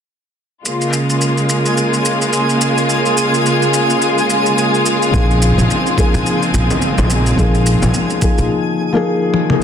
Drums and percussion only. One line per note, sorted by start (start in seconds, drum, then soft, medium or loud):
0.65 shaker soft
0.81 shaker soft
0.93 shaker medium
1.10 shaker soft
1.21 shaker soft
1.38 shaker soft
1.49 shaker medium
1.66 shaker soft
1.77 shaker soft
1.93 shaker soft
2.05 shaker medium
2.22 shaker soft
2.33 shaker soft
2.49 shaker soft
2.61 shaker medium
2.78 shaker soft
2.89 shaker soft
3.06 shaker soft
3.17 shaker medium
3.34 shaker soft
3.46 shaker soft
3.62 shaker soft
3.74 shaker medium
3.90 shaker soft
4.02 shaker soft
4.18 shaker soft
4.30 shaker medium
4.46 shaker soft
4.58 shaker soft
4.74 shaker soft
4.86 shaker medium
5.02 shaker soft
5.14 kick loud
5.14 shaker soft
5.31 shaker soft
5.42 shaker medium
5.58 frame drum medium
5.58 shaker soft
5.71 shaker soft
5.87 shaker soft
5.98 kick medium
5.98 shaker medium
6.14 shaker soft
6.26 shaker soft
6.43 shaker soft
6.54 shaker medium
6.70 frame drum medium
6.70 shaker soft
6.82 shaker soft
6.98 frame drum medium
6.98 shaker soft
7.10 shaker medium
7.26 shaker soft
7.38 kick loud
7.38 shaker soft
7.55 shaker soft
7.66 shaker medium
7.82 frame drum medium
7.82 shaker soft
7.94 shaker soft
8.10 shaker soft
8.22 kick loud
8.22 shaker medium
8.38 shaker soft
9.34 high tom medium
9.50 mid tom medium